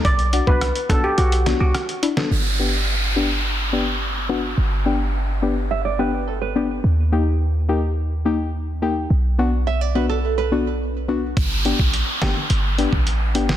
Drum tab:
HH |xxx-xxx-xxx-xxx-|----------------|----------------|----------------|
SD |----r-----o-r--o|----------------|----------------|----------------|
BD |o--o--o---------|----------------|----------------|----------------|

HH |----------------|x-x-x-x-x-x-x-x-|
SD |----------------|------o--------o|
BD |----------------|o--o-------o----|